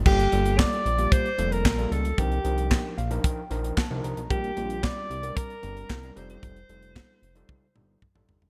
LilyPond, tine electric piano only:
\new Staff \with { instrumentName = "Tine electric piano" } { \time 4/4 \key g \minor \tempo 4 = 113 << { r1 | r4. f''8 g''4 a''8 bes''8 | r1 | r1 | } \\ { <g bes f' a'>16 r16 <g bes f' a'>4 r16 <g bes f' g'>8 r16 <g bes f' a'>8 r16 <g bes f' a'>8 r16 | <f d' ees' bes'>16 r16 <f d' ees' bes'>4 r16 <f d' ees' bes'>8 r16 <f d' ees' bes'>8 r16 <f d' ees' bes'>8 r16 | <g c' d' bes'>16 r16 <g c' d' f'>4 r16 <g c' d' bes'>8 r16 <g c' d' bes'>8 r16 <g c' d' bes'>16 <g ees' f' a'>8~ | <g ees' f' a'>16 r16 <g ees' f' a'>4 r16 <g ees' f' a'>8 r16 <g ees' f' a'>8 r16 <g ees' f' a'>8 r16 | } >> }